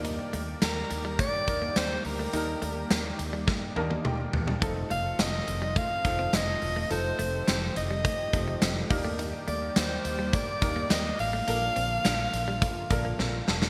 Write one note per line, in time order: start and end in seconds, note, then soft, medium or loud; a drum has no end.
0.00 0.17 D#2 loud
0.00 11.44 D#3 medium
0.00 4.58 G3 medium
0.00 0.67 A#3 loud
0.00 4.58 A#3 medium
0.00 0.68 D4 medium
0.00 0.68 D#4 medium
0.00 0.68 G4 medium
0.00 4.58 G4 medium
0.00 0.68 A#4 loud
0.00 4.58 D5 medium
0.05 0.15 D#4 medium
0.05 closed hi-hat medium
0.19 muted clean electric guitar stroke soft
0.33 0.54 D#2 loud
0.33 0.43 A3 medium
0.33 closed hi-hat medium
0.62 0.83 D#2 loud
0.62 0.72 A#3 medium
0.62 1.16 A#4 medium
0.62 snare loud
0.62 closed hi-hat medium
0.62 tambourine medium
0.90 1.21 D#2 medium
0.90 muted clean electric guitar stroke soft
0.90 closed hi-hat medium
1.05 1.15 G3 medium
1.19 1.29 A3 medium
1.19 1.79 D5 loud
1.19 kick medium
1.19 closed hi-hat medium
1.47 1.68 D#2 loud
1.47 2.07 A#3 medium
1.47 2.07 D4 medium
1.47 2.08 D#4 medium
1.47 2.08 G4 medium
1.47 2.08 A#4 medium
1.47 muted clean electric guitar stroke soft
1.47 kick medium
1.47 closed hi-hat medium
1.62 1.72 A#3 medium
1.76 1.97 D#2 loud
1.76 1.86 C4 medium
1.76 2.05 C5 loud
1.76 snare loud
1.76 closed hi-hat medium
1.76 tambourine medium
2.05 2.25 D2 medium
2.05 3.16 A#4 medium
2.05 muted clean electric guitar stroke soft
2.05 open hi-hat medium
2.19 2.29 A3 medium
2.33 2.54 D#2 loud
2.33 3.13 A#3 medium
2.33 3.13 D4 medium
2.33 3.13 D#4 medium
2.33 2.44 D#4 medium
2.33 3.13 G4 medium
2.33 3.14 A#4 medium
2.33 closed hi-hat medium
2.48 muted clean electric guitar stroke soft
2.62 2.82 D#2 loud
2.62 2.72 A3 medium
2.62 closed hi-hat medium
2.90 3.11 D#2 loud
2.90 3.01 A#3 medium
2.90 snare loud
2.90 closed hi-hat medium
2.90 tambourine medium
3.19 3.50 D#2 medium
3.19 muted clean electric guitar stroke soft
3.19 closed hi-hat medium
3.33 3.43 G3 medium
3.47 3.58 A3 medium
3.47 kick loud
3.47 snare medium
3.76 3.97 D#2 loud
3.76 4.36 A#3 medium
3.76 4.36 D4 medium
3.76 4.36 D#4 medium
3.76 4.36 G4 medium
3.76 4.36 A#4 medium
3.76 4.03 A5 medium
3.76 muted clean electric guitar stroke soft
3.76 high tom medium
3.90 4.00 A#3 medium
3.90 high tom medium
4.05 4.25 D#2 medium
4.05 4.15 A3 medium
4.05 4.58 G5 medium
4.05 mid tom medium
4.33 4.54 E2 medium
4.33 muted clean electric guitar stroke soft
4.33 floor tom loud
4.47 4.57 G3 medium
4.47 floor tom loud
4.61 4.83 F1 loud
4.61 4.72 F3 medium
4.61 8.87 F3 medium
4.61 5.41 A3 medium
4.61 8.87 A3 medium
4.61 5.42 C4 medium
4.61 8.87 C4 medium
4.61 5.42 D#4 medium
4.61 5.42 F4 medium
4.61 6.88 F4 medium
4.61 5.42 A4 loud
4.61 kick loud
4.61 closed hi-hat medium
4.76 muted clean electric guitar stroke soft
4.90 5.11 F1 loud
4.90 5.00 A3 medium
4.90 5.22 F5 loud
4.90 closed hi-hat medium
5.19 5.40 F1 loud
5.19 5.29 C4 medium
5.19 5.79 D#5 loud
5.19 snare loud
5.19 closed hi-hat medium
5.19 tambourine medium
5.47 5.78 F1 loud
5.47 muted clean electric guitar stroke soft
5.47 closed hi-hat medium
5.62 5.72 G3 medium
5.76 5.86 A3 medium
5.76 6.36 F5 loud
5.76 kick loud
5.76 closed hi-hat medium
6.04 6.25 F1 loud
6.04 6.64 A3 medium
6.04 6.65 C4 medium
6.04 6.65 D#4 medium
6.04 6.65 F4 medium
6.04 6.65 A4 medium
6.04 muted clean electric guitar stroke soft
6.04 kick medium
6.04 closed hi-hat medium
6.19 6.29 C4 medium
6.33 6.54 F1 loud
6.33 6.43 D4 medium
6.33 6.91 D#5 loud
6.33 snare loud
6.33 closed hi-hat loud
6.33 tambourine medium
6.62 6.83 E1 medium
6.62 muted clean electric guitar stroke soft
6.62 open hi-hat medium
6.76 6.86 A3 medium
6.90 7.11 F1 loud
6.90 7.01 F3 medium
6.90 7.70 A3 medium
6.90 7.70 C4 medium
6.90 7.70 D#4 medium
6.90 7.70 F4 medium
6.90 11.44 G4 medium
6.90 7.71 A4 medium
6.90 7.44 C5 loud
6.90 closed hi-hat medium
7.05 muted clean electric guitar stroke soft
7.19 7.40 F1 loud
7.19 7.29 A3 medium
7.19 closed hi-hat medium
7.48 7.68 F1 loud
7.48 7.58 C4 medium
7.48 7.75 C5 medium
7.48 snare loud
7.48 closed hi-hat medium
7.48 tambourine medium
7.76 8.07 F1 loud
7.76 8.87 D#5 loud
7.76 muted clean electric guitar stroke soft
7.76 closed hi-hat medium
7.91 8.01 G3 medium
8.05 8.15 A3 medium
8.05 kick medium
8.05 closed hi-hat medium
8.33 8.54 F1 loud
8.33 8.90 A3 medium
8.33 8.90 C4 medium
8.33 8.89 D#4 medium
8.33 8.91 F4 medium
8.33 8.89 G4 medium
8.33 muted clean electric guitar stroke soft
8.33 kick medium
8.33 closed hi-hat medium
8.48 8.58 A3 medium
8.62 8.82 F1 loud
8.62 8.72 C4 medium
8.62 snare loud
8.62 closed hi-hat loud
8.62 tambourine medium
8.90 9.32 D#2 loud
8.90 11.45 G3 medium
8.90 9.82 A#3 loud
8.90 11.45 A#3 medium
8.90 9.82 D4 medium
8.90 9.82 D#4 medium
8.90 9.82 G4 medium
8.90 9.82 A#4 loud
8.90 11.45 D5 medium
8.90 muted clean electric guitar stroke soft
8.90 kick loud
8.90 open hi-hat medium
9.05 9.15 A3 medium
9.19 9.29 D#4 medium
9.19 closed hi-hat medium
9.33 muted clean electric guitar stroke soft
9.48 9.68 D#2 loud
9.48 9.58 A3 medium
9.48 9.79 D5 medium
9.48 closed hi-hat medium
9.76 9.97 D#2 loud
9.76 9.86 A#3 medium
9.76 10.36 C5 medium
9.76 snare loud
9.76 closed hi-hat medium
9.76 tambourine medium
10.05 10.36 D#2 loud
10.05 muted clean electric guitar stroke soft
10.05 closed hi-hat medium
10.19 10.29 G3 medium
10.33 10.43 A3 medium
10.33 10.93 D5 loud
10.33 kick medium
10.33 closed hi-hat medium
10.61 10.83 D#2 loud
10.61 11.21 A#3 medium
10.61 11.22 D4 medium
10.61 11.22 D#4 medium
10.61 11.22 G4 medium
10.61 11.22 A#4 medium
10.61 muted clean electric guitar stroke soft
10.61 kick medium
10.61 closed hi-hat medium
10.76 10.86 A#3 medium
10.90 11.11 D#2 loud
10.90 11.00 C4 medium
10.90 11.20 D#5 loud
10.90 snare loud
10.90 closed hi-hat loud
10.90 tambourine medium
11.19 11.40 A1 medium
11.19 13.44 F5 loud
11.19 muted clean electric guitar stroke soft
11.19 open hi-hat medium
11.33 11.43 A3 medium
11.47 11.68 A#1 loud
11.47 13.70 D3 medium
11.47 13.70 F3 medium
11.47 12.27 A#3 medium
11.47 13.70 A#3 medium
11.47 11.58 A#3 medium
11.47 12.27 D4 medium
11.47 12.28 F4 medium
11.47 13.70 F4 medium
11.47 12.28 A4 medium
11.47 12.28 A#4 medium
11.47 closed hi-hat medium
11.62 muted clean electric guitar stroke soft
11.76 11.97 A#1 loud
11.76 11.86 C4 medium
11.76 closed hi-hat medium
12.05 12.25 A#1 medium
12.05 12.15 D4 medium
12.05 snare loud
12.05 closed hi-hat medium
12.05 tambourine medium
12.33 12.64 A#1 loud
12.33 muted clean electric guitar stroke soft
12.33 closed hi-hat medium
12.48 12.58 G3 medium
12.62 12.72 A3 medium
12.62 kick medium
12.62 closed hi-hat medium
12.90 13.11 A#1 medium
12.90 13.50 A#3 medium
12.90 13.50 D4 medium
12.90 13.50 F4 medium
12.90 13.51 A4 medium
12.90 13.51 A#4 loud
12.90 muted clean electric guitar stroke soft
12.90 kick medium
12.90 closed hi-hat medium
13.05 13.15 A#3 medium
13.19 13.40 A#1 loud
13.19 13.29 C4 medium
13.19 13.46 F5 medium
13.19 snare medium
13.48 13.68 E1 medium
13.48 13.70 A5 medium
13.48 muted clean electric guitar stroke soft
13.48 snare loud
13.62 13.70 A3 medium
13.62 snare loud